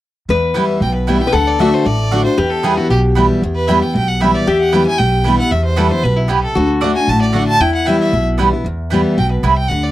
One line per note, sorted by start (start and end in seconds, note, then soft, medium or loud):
0.29 0.67 E2 medium
0.29 0.79 E2 medium
0.29 1.26 B4 loud
0.54 0.80 E3 medium
0.54 0.80 G3 medium
0.54 0.64 B3 medium
0.54 0.81 B3 medium
0.54 0.64 E4 medium
0.54 0.81 E4 loud
0.54 0.64 B4 medium
0.54 0.64 G5 medium
0.80 1.19 B1 medium
0.80 1.31 B2 medium
0.80 0.94 G5 medium
0.94 1.10 B4 soft
1.07 1.20 E3 medium
1.07 1.21 G3 medium
1.07 1.16 B3 medium
1.07 1.21 B3 medium
1.07 1.16 E4 medium
1.07 1.19 E4 medium
1.07 1.17 B4 medium
1.07 1.23 E5 medium
1.07 1.17 G5 medium
1.20 1.34 B3 soft
1.20 1.33 E4 medium
1.20 1.36 G5 medium
1.27 1.34 B4 medium
1.32 1.71 D2 medium
1.32 1.58 D3 medium
1.32 2.37 A4 loud
1.32 1.49 F#5 medium
1.48 1.61 D5 medium
1.59 1.84 D3 medium
1.59 1.69 A3 medium
1.59 1.85 A3 medium
1.59 1.85 D4 loud
1.59 1.69 F#4 medium
1.59 1.85 F#4 loud
1.59 1.69 D5 medium
1.59 1.75 E5 medium
1.59 1.69 F#5 medium
1.74 1.87 C5 medium
1.85 2.24 A1 medium
1.85 2.36 A2 medium
1.85 2.24 D5 medium
2.11 2.25 D3 medium
2.11 2.21 A3 medium
2.11 2.25 A3 medium
2.11 2.25 D4 medium
2.11 2.21 F#4 medium
2.11 2.23 F#4 medium
2.11 2.21 D5 medium
2.11 2.21 F#5 medium
2.24 2.38 D4 soft
2.24 2.37 F#4 medium
2.24 2.39 C5 medium
2.37 2.76 E2 medium
2.37 2.88 E2 medium
2.37 4.30 G4 loud
2.37 2.52 B4 medium
2.50 2.66 A4 medium
2.63 2.76 E3 medium
2.63 2.77 G3 loud
2.63 2.73 B3 medium
2.63 2.77 B3 loud
2.63 2.73 E4 medium
2.63 2.76 E4 loud
2.63 2.79 G#4 medium
2.63 2.73 B4 medium
2.63 2.73 G5 loud
2.77 2.91 B3 soft
2.77 2.90 E4 medium
2.77 2.90 F#4 medium
2.90 3.28 B1 medium
2.90 3.40 B2 medium
2.90 2.98 G4 medium
3.15 3.41 E3 medium
3.15 3.42 G3 medium
3.15 3.25 B3 medium
3.15 3.42 B3 medium
3.15 3.25 E4 medium
3.15 3.42 E4 medium
3.15 3.25 B4 medium
3.15 3.26 G5 medium
3.42 3.81 E2 medium
3.42 3.93 E2 medium
3.55 3.69 B4 loud
3.68 3.81 E3 medium
3.68 3.82 G3 medium
3.68 3.77 B3 medium
3.68 3.82 B3 medium
3.68 3.77 E4 medium
3.68 3.80 E4 loud
3.68 3.78 B4 loud
3.68 3.84 E5 medium
3.68 3.78 G5 loud
3.81 3.95 B3 medium
3.81 3.94 E4 medium
3.81 3.94 G5 medium
3.94 4.33 B1 medium
3.94 4.45 B2 medium
3.94 4.10 G5 loud
4.08 4.23 F#5 medium
4.20 4.46 E3 medium
4.20 4.46 G3 medium
4.20 4.30 B3 medium
4.20 4.47 B3 medium
4.20 4.30 E4 medium
4.20 4.47 E4 medium
4.20 4.30 B4 medium
4.20 4.36 E5 medium
4.20 4.30 G5 medium
4.34 4.50 D5 medium
4.46 4.85 E2 medium
4.46 4.97 E2 medium
4.46 6.62 G4 loud
4.46 4.60 E5 medium
4.61 4.74 F#5 medium
4.72 4.86 E3 medium
4.72 4.86 G3 medium
4.72 4.82 B3 medium
4.72 4.87 B3 loud
4.72 4.82 E4 medium
4.72 4.86 E4 medium
4.72 4.82 B4 medium
4.72 4.86 G5 medium
4.72 4.82 G5 loud
4.86 5.00 B3 soft
4.86 4.99 E4 medium
4.86 5.00 G#5 loud
4.98 5.38 B1 medium
4.98 5.49 B2 medium
4.98 5.38 G5 loud
5.24 5.38 E3 medium
5.24 5.39 G3 medium
5.24 5.34 B3 medium
5.24 5.39 B3 medium
5.24 5.34 E4 medium
5.24 5.38 E4 medium
5.24 5.34 B4 medium
5.24 5.34 G5 medium
5.38 5.52 B3 soft
5.38 5.51 E4 medium
5.38 5.53 F#5 medium
5.51 5.90 E2 medium
5.51 6.01 E2 medium
5.51 5.64 E5 medium
5.65 5.79 C5 medium
5.76 5.90 E3 medium
5.76 5.91 G3 loud
5.76 5.86 B3 medium
5.76 5.91 B3 medium
5.76 5.86 E4 loud
5.76 5.90 E4 loud
5.76 5.92 A4 medium
5.76 5.86 B4 medium
5.76 5.87 G5 loud
5.91 6.04 B3 medium
5.91 6.03 E4 medium
5.91 6.05 C5 loud
6.03 6.42 B1 medium
6.03 6.29 B2 medium
6.03 6.18 B4 medium
6.16 6.31 E4 medium
6.28 6.55 C3 medium
6.28 6.38 B3 medium
6.28 6.38 E4 medium
6.28 6.43 G4 medium
6.28 6.39 B4 medium
6.28 6.39 G5 medium
6.43 6.68 A4 medium
6.55 6.94 D2 medium
6.55 6.81 D3 loud
6.55 7.56 F#4 medium
6.81 6.95 D3 loud
6.81 6.90 A3 medium
6.81 6.95 A3 medium
6.81 6.96 D4 medium
6.81 6.91 F#4 medium
6.81 6.95 F#4 loud
6.81 6.91 D5 loud
6.81 6.91 F#5 loud
6.96 7.09 D4 soft
6.96 7.08 F#4 medium
6.96 7.10 G#5 loud
7.07 7.46 A1 medium
7.07 7.59 A2 medium
7.07 7.21 A5 loud
7.21 7.36 D5 medium
7.33 7.59 D3 medium
7.33 7.43 A3 medium
7.33 7.59 A3 medium
7.33 7.60 D4 medium
7.33 7.43 F#4 medium
7.33 7.60 F#4 medium
7.33 7.43 D5 medium
7.33 7.43 F#5 medium
7.33 7.47 F#5 medium
7.47 7.62 A5 loud
7.60 7.99 E2 medium
7.60 8.48 E4 medium
7.60 7.74 G5 loud
7.75 7.88 F#5 medium
7.85 8.12 E3 medium
7.85 8.12 G3 medium
7.85 7.95 B3 medium
7.85 8.12 B3 medium
7.85 7.95 E4 medium
7.85 8.13 E4 medium
7.85 7.96 B4 loud
7.85 8.00 E5 medium
7.85 7.96 G5 medium
8.00 8.24 E5 medium
8.12 8.51 B1 medium
8.12 8.63 B2 medium
8.38 8.51 E3 medium
8.38 8.52 G3 medium
8.38 8.47 B3 medium
8.38 8.52 B3 medium
8.38 8.48 E4 medium
8.38 8.52 E4 medium
8.38 8.48 B4 medium
8.38 8.48 G5 loud
8.53 8.66 B3 soft
8.53 8.65 E4 medium
8.64 9.03 E2 medium
8.64 9.15 E2 medium
8.90 9.16 E3 medium
8.90 9.17 G3 medium
8.90 9.00 B3 medium
8.90 9.17 B3 loud
8.90 9.00 E4 medium
8.90 9.17 E4 loud
8.90 9.00 B4 medium
8.90 9.00 G5 medium
9.18 9.40 B1 medium
9.18 9.42 B2 medium
9.18 9.30 G5 medium
9.31 9.45 B4 soft
9.43 9.66 C2 medium
9.43 9.69 C3 medium
9.43 9.52 B3 medium
9.43 9.53 E4 medium
9.43 9.53 B4 loud
9.43 9.58 E5 medium
9.43 9.53 G5 medium
9.57 9.70 G5 loud
9.68 9.92 D2 medium
9.68 9.92 D3 medium
9.68 9.85 F#5 medium
9.83 9.92 D5 medium